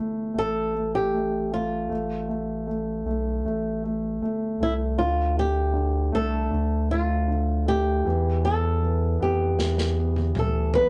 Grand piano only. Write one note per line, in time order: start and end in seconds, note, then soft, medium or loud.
0.00 0.34 A3 soft
0.34 0.73 A3 soft
0.75 1.12 A3 soft
1.13 1.50 A3 soft
1.52 1.88 A3 soft
1.89 2.27 A3 soft
2.29 2.66 A3 soft
2.67 3.05 A3 soft
3.06 3.44 A3 soft
3.45 3.82 A3 soft
3.84 4.21 A3 soft
4.22 4.59 A3 soft
4.60 4.97 A3 soft
4.98 5.72 D3 soft
5.37 6.11 A3 soft
5.74 6.49 D3 soft
6.12 6.88 A3 medium
6.51 7.26 D3 soft
6.90 7.65 A3 soft
7.28 8.03 D3 soft
7.66 8.04 A3 soft
8.05 8.80 E3 soft
8.43 9.18 B3 soft
8.82 9.58 E3 soft
9.20 9.96 B3 soft
9.59 10.33 E3 soft
9.97 10.72 B3 soft
10.35 10.89 E3 soft
10.74 10.89 B3 soft